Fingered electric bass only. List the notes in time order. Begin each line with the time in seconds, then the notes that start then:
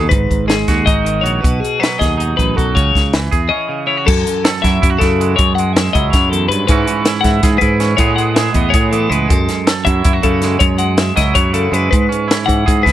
Already playing: D#2
0.11 G#1
0.30 G#1
0.68 D#2
0.87 G#1
1.23 A#1
1.44 B1
2.01 D#2
2.39 A1
2.58 B1
2.77 C#2
2.95 C#2
3.33 E2
4.08 F#2
4.64 F#2
4.83 F#2
5.01 F#2
5.39 F#2
5.94 C#2
6.14 F#2
6.49 G2
6.69 G#2
7.24 G#2
7.44 G#2
7.61 G#2
7.99 A2
8.54 E2
8.74 A2
9.11 C#2
9.31 F#2
9.86 F#2
10.05 F#2
10.24 F#2
10.61 F#2
11.18 C#2
11.36 F#2
11.72 F#2
11.92 G#2
12.48 G#2
12.68 G#2
12.86 C#2